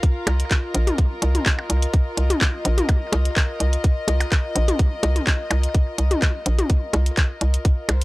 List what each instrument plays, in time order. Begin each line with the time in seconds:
Already playing: string section F4 A#4 F5
0.03 kick, closed hi-hat
0.27 fm bass C2, closed hi-hat, percussion blips
0.32 string section D#5
0.40 closed hi-hat
0.51 kick, clap, closed hi-hat
0.74 fm bass A#1, closed hi-hat
0.87 closed hi-hat, mid tom
0.98 kick, closed hi-hat
1.22 fm bass C2, closed hi-hat
1.35 closed hi-hat, mid tom
1.46 kick, clap, closed hi-hat
1.59 percussion blips
1.70 fm bass C2, closed hi-hat
1.82 closed hi-hat
1.94 kick, closed hi-hat
2.17 fm bass C2, closed hi-hat
2.30 closed hi-hat, mid tom
2.41 kick, clap, closed hi-hat
2.65 fm bass A#1, closed hi-hat
2.78 closed hi-hat, mid tom
2.89 kick, closed hi-hat, percussion blips
3.12 fm bass C2, closed hi-hat, percussion blips
3.25 closed hi-hat
3.36 kick, clap, closed hi-hat
3.60 fm bass C2, closed hi-hat
3.73 closed hi-hat
3.84 kick, closed hi-hat
4.08 fm bass C2, closed hi-hat, percussion blips
4.20 closed hi-hat, percussion blips
4.32 kick, clap, closed hi-hat
4.55 fm bass A#1, closed hi-hat
4.68 closed hi-hat, mid tom
4.79 kick, closed hi-hat
5.03 fm bass C2, closed hi-hat, percussion blips
5.16 closed hi-hat, mid tom
5.27 kick, clap, closed hi-hat
5.51 fm bass C2, closed hi-hat, percussion blips
5.63 closed hi-hat
5.74 kick, closed hi-hat
5.98 fm bass C2, closed hi-hat
6.11 closed hi-hat, mid tom
6.22 kick, clap, closed hi-hat
6.46 fm bass A#1, closed hi-hat
6.59 closed hi-hat, mid tom
6.70 kick, closed hi-hat
6.93 fm bass C2, closed hi-hat, percussion blips
7.06 closed hi-hat
7.17 kick, clap, closed hi-hat
7.41 fm bass C2, closed hi-hat
7.54 closed hi-hat
7.65 kick, closed hi-hat
7.89 fm bass C2, closed hi-hat, percussion blips
7.94 string section C5